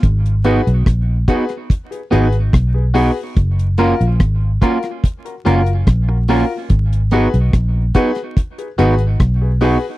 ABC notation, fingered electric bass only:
X:1
M:4/4
L:1/16
Q:1/4=72
K:G#dor
V:1 name="Fingered electric bass" clef=bass
G,,,3 B,,, A,,,2 z4 G,,,2 B,,,3 z | F,,,3 A,,, G,,,2 z4 F,,,2 A,,,3 z | G,,,3 B,,, A,,,2 z4 G,,,2 B,,,3 z |]